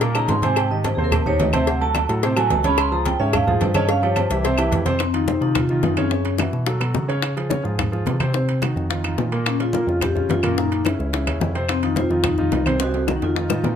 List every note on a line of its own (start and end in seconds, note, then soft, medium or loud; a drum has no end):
0.00 0.26 A#2 medium
0.00 0.12 A#2 medium
0.00 0.12 A#3 medium
0.00 0.13 A#4 medium
0.00 cowbell loud
0.00 high conga soft
0.00 low agogo medium
0.15 0.38 C#3 medium
0.15 0.38 C#4 medium
0.15 0.38 D#4 medium
0.15 0.29 A#5 loud
0.15 cowbell medium
0.15 high conga soft
0.15 low agogo loud
0.15 claves medium
0.28 0.93 G#2 medium
0.28 0.42 C6 loud
0.28 cowbell medium
0.28 high conga medium
0.28 low timbale medium
0.42 0.66 C3 loud
0.42 0.66 C4 medium
0.42 0.66 C5 medium
0.42 0.56 G#5 medium
0.42 cowbell medium
0.42 high conga medium
0.42 low agogo medium
0.56 0.70 G5 medium
0.56 cowbell loud
0.56 high conga soft
0.56 low agogo loud
0.56 claves medium
0.70 0.93 D#3 medium
0.70 0.93 D#4 medium
0.70 0.94 G4 medium
0.70 0.84 D#5 medium
0.70 high conga soft
0.84 0.94 C5 medium
0.84 cowbell medium
0.84 high conga loud
0.84 low timbale medium
0.84 low agogo medium
0.95 1.37 D#2 medium
0.95 1.21 C3 medium
0.95 1.21 C4 medium
0.95 1.03 G#4 medium
0.95 1.21 C5 medium
1.04 1.12 A#4 medium
1.12 1.26 C5 medium
1.12 cowbell loud
1.12 high conga soft
1.12 low conga medium
1.12 low agogo loud
1.12 claves medium
1.26 1.48 D#3 medium
1.26 1.49 D#4 medium
1.26 1.49 G4 medium
1.26 1.40 C#5 loud
1.26 high conga soft
1.26 low conga medium
1.40 2.04 D2 loud
1.40 1.53 D#5 medium
1.40 cowbell medium
1.40 high conga medium
1.40 low timbale medium
1.40 low agogo medium
1.53 1.65 C3 medium
1.53 1.65 C4 medium
1.53 1.65 C5 medium
1.53 1.67 E5 medium
1.53 cowbell medium
1.53 high conga loud
1.53 low agogo loud
1.53 claves medium
1.67 1.79 C3 medium
1.67 1.79 C4 medium
1.67 1.79 C5 medium
1.67 1.81 F#5 medium
1.67 cowbell loud
1.67 high conga soft
1.81 2.04 F#3 medium
1.81 2.04 F#4 medium
1.81 2.04 A4 medium
1.81 1.90 A5 loud
1.81 high conga soft
1.81 low agogo medium
1.95 cowbell medium
1.95 high conga loud
1.95 low timbale medium
1.95 low agogo loud
1.95 claves medium
2.08 2.48 A2 loud
2.08 2.20 F#3 medium
2.08 2.20 F#4 medium
2.08 2.21 A4 medium
2.08 cowbell medium
2.08 high conga soft
2.23 2.34 C3 medium
2.23 2.34 C4 medium
2.23 2.34 C5 medium
2.23 cowbell loud
2.23 high conga soft
2.23 low agogo medium
2.36 2.59 F#3 medium
2.36 2.59 F#4 medium
2.36 2.60 A4 medium
2.36 2.50 G#5 loud
2.36 cowbell medium
2.36 high conga soft
2.36 low agogo loud
2.36 claves medium
2.50 3.15 C#2 medium
2.50 2.65 A5 medium
2.50 cowbell medium
2.50 high conga medium
2.50 low timbale medium
2.64 2.87 C#3 loud
2.64 2.87 C#4 loud
2.64 2.87 C#5 medium
2.64 2.78 B5 loud
2.64 cowbell medium
2.64 high conga medium
2.64 low agogo medium
2.78 2.92 C6 loud
2.78 cowbell loud
2.78 high conga soft
2.78 low agogo loud
2.78 claves medium
2.92 3.15 F3 medium
2.92 3.15 F4 medium
2.92 3.15 G#4 medium
2.92 3.05 A#5 medium
2.92 high conga soft
3.05 3.19 G5 medium
3.05 cowbell medium
3.05 high conga loud
3.05 low timbale medium
3.05 low agogo medium
3.20 3.58 G#2 medium
3.20 3.42 C#3 medium
3.20 3.42 C#4 medium
3.20 3.43 C#5 medium
3.20 3.33 E5 medium
3.33 3.47 F5 loud
3.33 cowbell loud
3.33 high conga soft
3.33 low conga medium
3.33 low agogo loud
3.33 claves medium
3.47 3.70 F3 medium
3.47 3.70 F4 medium
3.47 3.61 G#4 medium
3.47 3.70 G#4 medium
3.47 high conga soft
3.47 low conga medium
3.61 4.25 G2 loud
3.61 3.75 C5 medium
3.61 cowbell medium
3.61 high conga medium
3.61 low timbale medium
3.61 low agogo medium
3.74 3.86 C#3 loud
3.74 3.87 C#4 loud
3.74 3.87 C#5 loud
3.74 3.88 D#5 medium
3.74 cowbell medium
3.74 high conga medium
3.74 low agogo loud
3.74 claves medium
3.88 4.00 C#3 medium
3.88 4.00 C#4 medium
3.88 4.00 C#5 medium
3.88 4.02 F5 loud
3.88 cowbell loud
4.02 4.26 F3 medium
4.02 4.26 F4 medium
4.02 4.26 G4 medium
4.02 4.16 C#5 medium
4.02 high conga soft
4.02 low agogo medium
4.16 4.30 C5 medium
4.16 cowbell medium
4.16 high conga medium
4.16 low timbale medium
4.16 low agogo loud
4.16 claves medium
4.30 4.69 C2 medium
4.30 4.42 E3 medium
4.30 4.42 E4 medium
4.30 4.43 G4 medium
4.30 4.70 E5 loud
4.30 cowbell medium
4.30 high conga soft
4.44 4.56 C3 medium
4.44 4.56 C4 medium
4.44 4.56 C5 medium
4.44 cowbell loud
4.44 high conga soft
4.44 low agogo medium
4.58 4.81 E3 medium
4.58 4.81 E4 medium
4.58 4.81 G4 medium
4.58 cowbell medium
4.58 high conga soft
4.58 low agogo loud
4.58 claves medium
4.72 5.36 F2 medium
4.72 cowbell medium
4.72 high conga medium
4.72 low timbale medium
4.85 4.97 C3 medium
4.85 4.97 C4 medium
4.85 4.97 C5 loud
4.85 cowbell medium
4.85 high conga medium
4.85 low agogo medium
4.99 5.07 C4 medium
4.99 high bongo medium
4.99 high conga soft
4.99 high timbale medium
4.99 claves medium
5.13 5.25 D#3 medium
5.13 5.25 D#4 medium
5.13 5.40 D#4 medium
5.13 5.25 F4 medium
5.13 high bongo soft
5.13 high conga soft
5.13 high timbale medium
5.28 5.39 C3 medium
5.28 5.39 C4 medium
5.28 5.40 C5 medium
5.28 high bongo medium
5.28 high conga loud
5.41 5.80 C3 medium
5.41 5.64 D#3 medium
5.41 5.64 D#4 medium
5.41 5.55 D#4 medium
5.41 5.64 F4 medium
5.41 high bongo soft
5.41 high conga soft
5.55 5.84 F4 medium
5.55 high bongo medium
5.55 high conga soft
5.55 low conga medium
5.55 high timbale medium
5.55 claves medium
5.69 5.93 D#3 medium
5.69 5.93 D#4 medium
5.69 5.93 F4 medium
5.69 high bongo soft
5.69 high conga soft
5.83 6.47 F#2 medium
5.83 5.96 D#4 medium
5.83 high bongo soft
5.83 low bongo medium
5.83 high conga medium
5.83 high timbale medium
5.83 low timbale medium
5.97 6.09 C#3 medium
5.97 6.04 C4 medium
5.97 6.09 C#4 medium
5.97 6.09 C#5 medium
5.97 high conga medium
5.97 high timbale medium
5.97 claves medium
6.11 6.34 C#3 medium
6.11 6.34 C#4 medium
6.11 6.38 C#4 medium
6.11 6.35 C#5 medium
6.11 high bongo medium
6.11 high conga soft
6.25 high bongo soft
6.25 high conga soft
6.25 high timbale medium
6.38 6.62 E3 medium
6.38 6.62 E4 medium
6.38 6.62 F#4 medium
6.38 high bongo medium
6.38 high conga medium
6.38 high timbale medium
6.38 claves medium
6.53 6.79 B2 medium
6.53 high bongo soft
6.53 high conga soft
6.67 6.78 F#3 medium
6.67 6.78 F#4 medium
6.67 6.79 A4 medium
6.67 high bongo medium
6.67 high conga soft
6.67 high timbale medium
6.80 6.94 B2 medium
6.80 7.03 F#3 medium
6.80 7.04 F#4 medium
6.80 7.04 A4 medium
6.80 high bongo soft
6.80 high conga soft
6.80 high timbale medium
6.80 claves medium
6.95 7.59 C#3 medium
6.95 high bongo soft
6.95 low bongo medium
6.95 high conga medium
7.08 7.31 C#3 medium
7.08 7.32 C#4 medium
7.08 7.32 C#5 medium
7.08 high conga soft
7.08 high timbale medium
7.22 high bongo medium
7.22 high conga soft
7.22 high timbale medium
7.22 claves medium
7.37 7.48 F3 medium
7.37 7.48 F4 medium
7.37 7.48 G#4 medium
7.37 high bongo soft
7.37 high conga soft
7.37 high timbale medium
7.50 7.62 C#3 medium
7.50 7.62 C#4 medium
7.50 7.62 C#5 medium
7.50 high bongo medium
7.50 high conga medium
7.63 8.04 G#2 medium
7.63 7.87 F3 medium
7.63 7.87 F4 medium
7.63 7.87 G#4 medium
7.63 high bongo soft
7.63 high conga soft
7.79 high bongo medium
7.79 high conga soft
7.79 low conga medium
7.79 high timbale medium
7.79 claves medium
7.92 8.15 F3 medium
7.92 8.15 F4 medium
7.92 8.15 G#4 medium
7.92 high bongo soft
7.92 high conga soft
8.06 8.71 C3 medium
8.06 high bongo soft
8.06 low bongo medium
8.06 high conga medium
8.06 high timbale medium
8.06 low timbale medium
8.20 8.32 C3 medium
8.20 8.32 C4 medium
8.20 8.32 C5 medium
8.20 high conga medium
8.20 high timbale medium
8.20 claves medium
8.34 8.57 C3 medium
8.34 8.57 C4 medium
8.34 8.57 C5 medium
8.34 high bongo medium
8.34 high conga soft
8.48 high bongo soft
8.48 high conga soft
8.48 high timbale medium
8.62 8.85 D#3 medium
8.62 8.85 D#4 medium
8.62 8.85 F#4 medium
8.62 high bongo medium
8.62 high conga medium
8.62 high timbale medium
8.62 claves medium
8.76 9.15 F2 medium
8.76 high bongo soft
8.76 high conga soft
8.89 9.01 D#3 medium
8.89 9.01 D#4 medium
8.89 9.02 F4 medium
8.89 high bongo medium
8.89 high conga soft
8.89 high timbale medium
9.04 9.27 D#3 medium
9.04 9.27 D#4 medium
9.04 9.27 F4 medium
9.04 high bongo soft
9.04 high conga soft
9.04 high timbale medium
9.04 claves medium
9.18 9.82 A#2 medium
9.18 high bongo soft
9.18 low bongo medium
9.18 high conga medium
9.18 low timbale medium
9.32 9.55 A#2 medium
9.32 9.55 A#3 medium
9.32 9.55 A#4 medium
9.32 high conga soft
9.32 high timbale medium
9.46 9.61 C#4 medium
9.46 high bongo medium
9.46 high conga soft
9.46 high timbale medium
9.46 claves medium
9.60 9.71 C#3 medium
9.60 9.72 C#4 medium
9.60 9.72 F4 medium
9.60 9.99 F4 medium
9.60 high bongo soft
9.60 high conga soft
9.60 high timbale medium
9.73 9.85 A#2 medium
9.73 9.85 A#3 medium
9.73 9.85 A#4 medium
9.73 high bongo medium
9.73 high conga medium
9.87 10.27 F2 medium
9.87 10.11 C#3 medium
9.87 10.11 C#4 medium
9.87 10.11 F4 medium
9.87 high bongo soft
9.87 high conga soft
10.01 10.31 G4 loud
10.01 high bongo medium
10.01 high conga soft
10.01 low conga medium
10.01 high timbale medium
10.01 claves medium
10.15 10.38 C#3 medium
10.15 10.38 C#4 medium
10.15 10.39 F4 medium
10.15 high bongo soft
10.15 high conga soft
10.15 low conga medium
10.29 10.94 F#2 medium
10.29 10.43 F4 medium
10.29 high bongo soft
10.29 low bongo medium
10.29 high conga medium
10.29 high timbale medium
10.29 low timbale medium
10.43 10.55 A#2 medium
10.43 10.55 A#3 medium
10.43 10.57 C#4 medium
10.43 10.55 A#4 medium
10.43 high conga medium
10.43 high timbale medium
10.43 claves medium
10.57 10.80 A#2 medium
10.57 10.80 A#3 medium
10.57 10.84 D#4 medium
10.57 10.80 A#4 medium
10.57 high bongo medium
10.71 high bongo soft
10.71 high conga soft
10.71 high timbale medium
10.85 11.08 C#3 medium
10.85 11.09 C#4 medium
10.85 11.09 E4 medium
10.85 high bongo medium
10.85 high conga medium
10.85 high timbale medium
10.85 claves medium
10.99 11.25 C#2 medium
10.99 high bongo soft
10.99 high conga soft
11.13 11.25 C#3 medium
11.13 11.25 C#4 medium
11.13 11.25 E4 medium
11.13 high bongo medium
11.13 high conga soft
11.13 high timbale medium
11.27 11.40 D#2 medium
11.27 11.50 C#3 medium
11.27 11.50 C#4 medium
11.27 11.50 E4 medium
11.27 high bongo soft
11.27 high conga soft
11.27 high timbale medium
11.27 claves medium
11.41 12.05 F2 loud
11.41 high bongo soft
11.41 low bongo medium
11.41 high conga medium
11.41 low timbale medium
11.55 11.78 C3 medium
11.55 11.78 C4 medium
11.55 11.78 C5 medium
11.55 high conga soft
11.55 high timbale medium
11.69 11.82 C4 medium
11.69 high bongo medium
11.69 high conga soft
11.69 high timbale medium
11.69 claves medium
11.82 11.94 D#3 medium
11.82 11.94 D#4 medium
11.82 11.98 D#4 medium
11.82 11.95 F4 medium
11.82 high bongo soft
11.82 high conga soft
11.82 high timbale medium
11.96 12.08 C3 medium
11.96 12.08 C4 medium
11.96 12.23 F4 medium
11.96 12.08 C5 medium
11.96 high bongo medium
11.96 high conga loud
12.10 12.49 F2 medium
12.10 12.33 D#3 medium
12.10 12.34 D#4 medium
12.10 12.34 F4 medium
12.10 high bongo soft
12.24 12.64 D#4 medium
12.24 high bongo medium
12.24 high conga soft
12.24 low conga medium
12.24 high timbale medium
12.24 claves medium
12.38 12.61 D#3 medium
12.38 12.61 D#4 medium
12.38 12.62 F4 medium
12.38 high bongo soft
12.38 high conga soft
12.38 low conga medium
12.52 13.16 C2 medium
12.52 high bongo soft
12.52 low bongo medium
12.52 high conga medium
12.52 high timbale medium
12.52 low timbale medium
12.66 12.77 C3 medium
12.66 12.77 C4 medium
12.66 12.78 C5 medium
12.66 high conga medium
12.66 high timbale medium
12.66 claves medium
12.80 13.03 C3 medium
12.80 13.03 C4 medium
12.80 13.07 F#4 medium
12.80 13.03 C5 medium
12.80 high bongo medium
12.80 high timbale loud
12.94 high bongo soft
12.94 high conga soft
12.94 high timbale medium
13.07 13.30 D#3 medium
13.07 13.30 D#4 medium
13.07 13.31 F#4 medium
13.07 high bongo medium
13.07 high conga loud
13.07 claves medium
13.16 13.23 D#4 medium
13.22 13.48 F2 medium
13.22 13.75 F4 medium
13.22 high bongo soft
13.22 high timbale medium
13.35 13.47 D#3 medium
13.35 13.47 D#4 medium
13.35 13.47 F4 medium
13.35 high bongo medium
13.35 high conga soft
13.35 low timbale medium
13.49 13.63 A2 medium
13.49 13.72 D#3 medium
13.49 13.73 D#4 medium
13.49 13.73 F4 medium
13.49 high bongo medium
13.49 low timbale medium
13.49 claves medium
13.64 13.76 A#2 medium
13.64 low bongo medium
13.64 high conga medium
13.64 low timbale medium